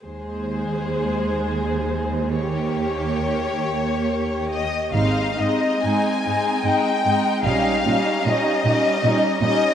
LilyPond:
<<
  \new Staff \with { instrumentName = "Violin section" } { \time 3/4 \key aes \major \tempo 4 = 75 c''2. | des''2~ des''8 ees''8 | f''8 ees''8 aes''4 g''4 | f''4 ees''4. ees''8 | }
  \new Staff \with { instrumentName = "Violin section" } { \time 3/4 \key aes \major aes'2. | g'2~ g'8. r16 | <ees' ees''>8 <ees' ees''>8 <ees' ees''>8 <ees' ees''>8 <ees' ees''>8 <ees' ees''>8 | <ees' ees''>8 <ees' ees''>8 <ees' ees''>8 <ees' ees''>8 <ees' ees''>8 <ees' ees''>8 | }
  \new Staff \with { instrumentName = "Viola section" } { \time 3/4 \key aes \major aes2. | bes2~ bes8. r16 | <aes c'>8 <aes c'>8 <aes c'>8 <aes c'>8 <aes c'>8 <aes c'>8 | <g des'>8 <g des'>8 <g des'>8 <g des'>8 <g des'>8 <g des'>8 | }
  \new Staff \with { instrumentName = "Cello section" } { \clef bass \time 3/4 \key aes \major ees,2.~ | ees,2~ ees,8. r16 | aes,8 aes,8 aes,8 aes,8 aes,8 aes,8 | bes,8 bes,8 bes,8 bes,8 bes,8 bes,8 | }
  \new Staff \with { instrumentName = "Double bass section" } { \clef bass \time 3/4 \key aes \major r2. | r2. | aes,,8 r2 r8 | bes,,8 r2 r8 | }
>>